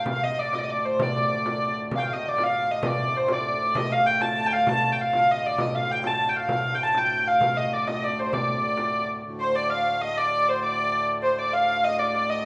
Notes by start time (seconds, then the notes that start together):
Already playing: D2 A2
0.06 F5, frame drum
0.23 D#5, frame drum
0.39 D5, frame drum
0.53 D#5, frame drum
0.58 D5
0.63 D#5
0.70 D5
0.85 C5, frame drum
0.99 D5, frame drum
1.30 frame drum
1.46 frame drum
1.62 frame drum
1.91 D2 A2, frame drum
1.96 F5 G5
2.04 F5, frame drum
2.13 D#5
2.22 frame drum
2.28 D5
2.38 frame drum
2.43 F5
2.68 D#5, frame drum
2.83 D5, frame drum
2.99 frame drum
3.14 C5, frame drum
3.28 D5, frame drum
3.60 D5, frame drum
3.75 D#5, frame drum
3.90 F5, frame drum
4.06 G5, frame drum
4.21 A5, frame drum
4.46 G5
4.53 F5, frame drum
4.67 A5, frame drum
4.92 G5
5.01 F5
5.13 F5, frame drum
5.31 D#5
5.46 D5
5.57 D2 A2 D#5, frame drum
5.75 F5
5.89 G5, frame drum
6.04 A5, frame drum
6.29 G5
6.35 F5, frame drum
6.49 F5, frame drum
6.65 frame drum
6.75 G5
6.80 A5, frame drum
6.95 G5, frame drum
7.26 F5, frame drum
7.41 F5, frame drum
7.57 D#5, frame drum
7.72 D5, frame drum
7.87 D#5, frame drum
8.04 D5
8.18 C5, frame drum
8.33 D5, frame drum
8.48 frame drum
8.63 frame drum
8.78 frame drum
9.24 D2 A2
9.40 C5
9.55 D5
9.70 F5
10.01 D#5
10.17 D5
10.48 C5
10.63 D5
11.22 C5
11.39 D5
11.53 F5
11.84 D#5
11.99 D5
12.14 D5
12.30 D#5